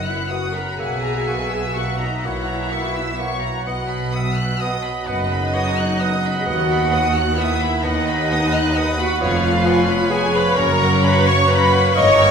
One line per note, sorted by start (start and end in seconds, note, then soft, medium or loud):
0.00 0.55 F#1 medium
0.00 0.55 F#2 medium
0.00 3.62 F#3 soft
0.00 0.75 B3 soft
0.00 0.79 F#5 medium
0.00 3.62 F#5 medium
0.05 0.30 E4 medium
0.05 0.31 E4 medium
0.05 0.30 E5 medium
0.05 0.30 F#6 soft
0.29 0.47 B3 soft
0.29 0.54 F#4 medium
0.29 0.46 F#5 soft
0.29 0.54 F#5 medium
0.29 0.54 D#6 soft
0.53 0.78 A#4 medium
0.53 0.79 A#4 medium
0.53 0.79 A#5 medium
0.53 0.78 B5 soft
0.78 2.01 B1 medium
0.78 2.01 B2 medium
0.78 0.95 A#3 medium
0.78 3.63 A#3 medium
0.78 1.74 G#4 medium
0.78 2.27 E5 medium
0.78 1.01 F#5 medium
0.78 0.95 F#5 medium
0.78 1.74 G#5 medium
0.78 1.77 G#5 medium
1.01 1.27 A#5 soft
1.26 1.44 A#3 soft
1.26 1.44 F#5 soft
1.26 1.51 C#6 soft
1.50 1.75 E6 soft
1.75 1.93 A#3 soft
1.75 2.00 F#4 medium
1.75 2.01 F#4 medium
1.75 2.01 F#5 medium
1.75 1.94 F#5 soft
1.75 2.02 F#5 medium
1.75 2.00 C#6 medium
2.00 2.25 D#4 medium
2.00 2.25 D#5 medium
2.00 2.24 A#5 soft
2.23 3.43 B1 medium
2.23 3.43 B2 medium
2.23 2.41 A#3 medium
2.23 3.63 E4 medium
2.23 3.66 E4 medium
2.23 2.74 C#5 medium
2.23 3.66 E5 medium
2.23 3.67 E5 medium
2.23 2.48 F#5 medium
2.23 2.42 F#5 soft
2.47 2.71 A#5 medium
2.70 2.88 A#3 soft
2.70 3.21 E5 medium
2.70 2.88 F#5 medium
2.70 2.95 C#6 medium
2.94 3.19 E6 soft
3.17 3.35 A#3 medium
3.17 3.69 C#5 medium
3.17 3.35 F#5 soft
3.17 3.42 C#6 medium
3.41 3.65 A#5 medium
3.64 4.85 B1 medium
3.64 4.84 B2 medium
3.64 6.42 F#3 medium
3.64 9.04 B3 medium
3.64 3.83 B3 medium
3.64 4.14 D#5 medium
3.64 3.87 F#5 medium
3.64 9.04 F#5 medium
3.64 3.82 F#5 medium
3.88 4.13 B5 medium
4.12 4.30 B3 medium
4.12 4.63 E5 medium
4.12 4.30 F#5 medium
4.12 4.37 D#6 medium
4.36 4.60 F#6 medium
4.60 4.77 B3 medium
4.60 5.09 D#5 medium
4.60 4.77 F#5 medium
4.60 4.84 D#6 medium
4.83 5.07 B5 medium
5.07 6.24 F#1 medium
5.07 6.24 F#2 medium
5.07 5.24 B3 medium
5.07 6.36 D#4 loud
5.07 6.42 D#4 medium
5.07 5.55 B4 medium
5.07 6.42 D#5 medium
5.07 6.43 D#5 medium
5.07 5.23 F#5 medium
5.07 5.31 F#5 medium
5.30 5.54 B5 medium
5.54 5.70 B3 medium
5.54 6.01 C#5 medium
5.54 5.70 F#5 medium
5.54 5.78 D#6 medium
5.77 6.01 F#6 medium
5.99 6.17 B3 medium
5.99 7.57 D#5 medium
5.99 6.15 F#5 medium
5.99 6.24 D#6 medium
6.25 6.47 B5 medium
6.39 6.46 G#4 medium
6.45 7.60 D#2 medium
6.45 7.61 D#2 medium
6.45 9.04 D#3 medium
6.45 6.62 B3 medium
6.45 7.37 F#4 loud
6.45 7.36 F#4 medium
6.45 7.35 F#5 medium
6.45 6.62 F#5 medium
6.45 6.69 F#5 medium
6.71 6.93 B5 medium
6.91 7.07 B3 medium
6.91 7.07 F#5 medium
6.91 7.15 D#6 medium
7.16 7.39 F#6 medium
7.37 7.53 B3 medium
7.37 7.84 E4 medium
7.37 7.85 E4 medium
7.37 7.84 E5 medium
7.37 7.83 E5 medium
7.37 7.53 F#5 medium
7.37 7.62 D#6 medium
7.61 7.85 B5 medium
7.83 8.99 D#2 medium
7.83 8.00 B3 medium
7.83 9.00 D#4 loud
7.83 9.00 D#4 medium
7.83 10.58 B4 medium
7.83 8.99 D#5 medium
7.83 7.99 F#5 medium
7.83 8.08 F#5 medium
8.08 8.32 B5 medium
8.30 8.47 B3 medium
8.30 8.46 F#5 medium
8.30 8.55 D#6 medium
8.55 8.78 F#6 medium
8.75 8.92 B3 medium
8.75 8.91 F#5 medium
8.75 8.99 D#6 medium
8.99 9.22 F#4 medium
8.99 9.21 F#4 loud
8.99 9.22 F#5 medium
8.99 9.22 B5 medium
9.21 10.34 F1 medium
9.21 10.33 F2 medium
9.21 10.57 F3 medium
9.21 9.37 B3 medium
9.21 10.54 B3 medium
9.21 10.09 F4 loud
9.21 10.11 F4 loud
9.21 9.37 C#5 medium
9.21 11.91 C#5 medium
9.21 9.42 C#5 medium
9.21 10.09 F5 medium
9.21 9.85 F5 loud
9.44 9.66 F5 medium
9.65 9.81 B3 medium
9.65 9.81 C#5 medium
9.65 9.88 G#5 medium
9.89 10.11 B5 medium
10.10 10.26 B3 medium
10.10 10.34 G#4 loud
10.10 10.27 C#5 medium
10.10 10.33 G#5 medium
10.10 10.34 G#5 loud
10.10 10.35 G#5 medium
10.33 10.57 B4 loud
10.33 10.58 F5 medium
10.33 10.57 B5 loud
10.56 11.72 F#1 medium
10.56 11.72 F#2 medium
10.56 11.95 F#3 medium
10.56 12.31 A#3 medium
10.56 10.73 C#4 medium
10.56 11.03 A#4 loud
10.56 11.04 A#4 loud
10.56 10.73 C#5 medium
10.56 11.94 C#5 loud
10.56 10.79 C#5 medium
10.56 11.04 A#5 loud
10.81 11.04 F#5 medium
11.02 11.20 C#4 medium
11.02 11.27 B4 loud
11.02 11.28 B4 loud
11.02 11.20 C#5 medium
11.02 11.27 A#5 medium
11.02 11.26 B5 loud
11.02 11.27 B5 loud
11.26 11.50 C#5 loud
11.26 11.49 C#6 loud
11.26 11.50 C#6 loud
11.26 11.50 C#6 medium
11.49 11.66 C#4 medium
11.49 11.96 B4 loud
11.49 11.95 B4 loud
11.49 11.65 C#5 medium
11.49 11.72 A#5 medium
11.49 11.95 B5 loud
11.72 11.95 F#5 medium
11.94 12.31 G1 medium
11.94 12.31 G2 loud
11.94 12.31 D#3 medium
11.94 12.12 A#3 medium
11.94 12.31 A#4 loud
11.94 12.31 C#5 loud
11.94 12.16 D#5 medium
11.94 12.10 D#5 medium
11.94 12.31 D#5 loud
11.94 12.31 C#6 loud
12.17 12.31 G5 medium